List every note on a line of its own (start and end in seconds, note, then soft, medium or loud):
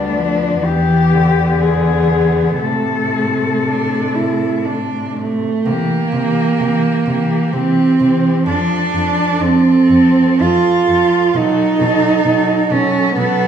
0.00 0.62 D2 soft
0.00 0.18 G3 soft
0.00 0.62 B3 soft
0.00 0.65 D4 medium
0.16 0.67 F3 soft
0.62 2.57 E2 soft
0.62 1.15 E3 soft
0.62 2.64 B3 soft
0.62 1.62 G4 medium
1.13 2.61 D3 soft
1.60 2.60 G#4 soft
2.61 5.41 A2 soft
2.61 5.42 C3 soft
2.61 3.54 A3 soft
2.61 4.62 A4 soft
3.64 4.16 D4 soft
4.15 4.67 E4 soft
4.66 5.17 D4 soft
5.18 5.68 A3 soft
5.66 5.74 C3 soft
5.66 6.13 E3 soft
5.66 7.55 A#3 medium
5.66 6.13 G4 soft
6.13 6.21 C3 soft
6.13 6.60 E3 soft
6.13 6.60 G4 soft
6.59 6.67 C3 soft
6.59 7.07 E3 soft
6.59 7.07 G4 soft
7.06 7.14 C3 soft
7.06 7.53 E3 soft
7.06 7.54 G4 soft
7.53 7.61 C3 soft
7.53 7.99 E3 soft
7.53 8.46 C4 medium
7.53 8.00 G4 soft
8.00 8.08 C3 soft
8.00 8.46 E3 soft
8.00 8.46 G4 soft
8.47 8.55 F2 soft
8.47 8.93 F3 soft
8.47 9.43 D4 medium
8.47 8.93 A4 soft
8.94 9.02 F2 soft
8.94 9.39 F3 soft
8.94 9.40 A4 soft
9.40 9.48 F2 soft
9.40 9.89 F3 soft
9.40 10.43 C4 medium
9.40 9.90 A4 soft
9.89 9.98 F2 soft
9.89 10.39 F3 soft
9.89 10.40 A4 soft
10.40 10.48 F2 soft
10.40 10.88 F3 soft
10.40 11.37 F4 medium
10.40 10.87 A4 soft
10.87 10.96 F2 soft
10.87 11.34 F3 soft
10.87 11.33 A4 soft
11.34 11.42 B2 soft
11.34 11.79 F#3 soft
11.34 12.73 D#4 medium
11.34 11.79 A4 soft
11.80 11.88 B2 soft
11.80 12.24 F#3 soft
11.80 12.24 A4 soft
12.25 12.33 B2 soft
12.25 12.70 F#3 soft
12.25 12.70 A4 soft
12.70 12.78 B2 soft
12.70 13.16 F#3 soft
12.70 13.16 C#4 medium
12.70 13.16 A4 soft
13.17 13.25 B2 soft
13.17 13.48 F#3 soft
13.17 13.48 B3 medium
13.17 13.48 A4 soft